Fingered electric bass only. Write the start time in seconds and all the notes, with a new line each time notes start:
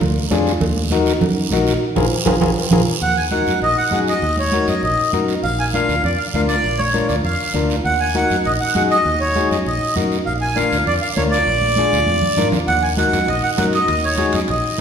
0.02 D2
0.32 F2
0.62 D#2
1.22 F#2
1.52 A#1
1.97 A#1
2.27 A#1
2.42 A#1
2.71 A#1
3.01 D#2
3.47 F#2
3.62 A#1
3.92 F#2
4.22 D#2
4.68 F#2
4.83 A#1
5.13 F#2
5.43 A#1
5.89 D2
6.04 F2
6.34 D2
6.64 A#1
7.09 D2
7.24 F2
7.54 D2
7.85 D#2
8.31 F#2
8.46 A#1
8.75 F#2
9.05 D#2
9.51 F#2
9.66 A#1
9.97 F#2
10.27 A#1
10.72 D2
10.86 F2
11.17 D2
11.47 A#1
11.93 D2
12.07 F2
12.38 G#2
12.52 F2
12.68 D#2
13.13 F#2
13.28 A#1
13.58 F#2
13.89 D#2
14.34 F#2
14.49 A#1